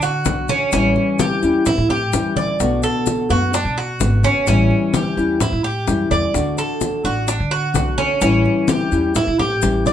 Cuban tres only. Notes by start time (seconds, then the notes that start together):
0.03 F#4
0.49 C#4
0.73 C#4
1.20 G4
1.67 E4
1.90 G4
2.37 D5
2.83 A4
3.30 F#4
3.54 D4
3.78 F#4
4.24 C#4
4.48 C#4
4.94 G4
5.41 E4
5.64 G4
6.11 D5
6.58 A4
7.05 F#4
7.28 D4
7.51 F#4
7.98 C#4
8.21 C#4
8.69 G4
9.16 E4
9.39 G4
9.87 D5